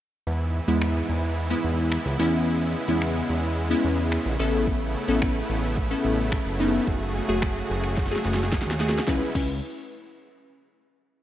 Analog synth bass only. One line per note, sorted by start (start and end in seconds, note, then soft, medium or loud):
0.27 0.60 E2 loud
0.68 1.02 E2 medium
1.09 1.54 E2 medium
1.64 1.98 E2 loud
2.06 2.17 C#2 medium
2.19 2.76 E2 loud
2.88 3.22 E2 medium
3.30 3.74 E2 medium
3.85 4.18 E2 loud
4.26 4.37 A#1 medium
4.40 4.96 A1 loud
5.08 5.42 A1 medium
5.50 5.95 A1 medium
6.05 6.38 A1 loud
6.46 6.80 F#1 medium
6.87 7.21 F#1 loud
7.29 7.62 F#1 medium
7.70 8.15 F#1 medium
8.25 8.59 F#1 loud
8.66 9.00 D#2 medium
9.08 9.23 C#2 loud
9.35 9.61 C#2 loud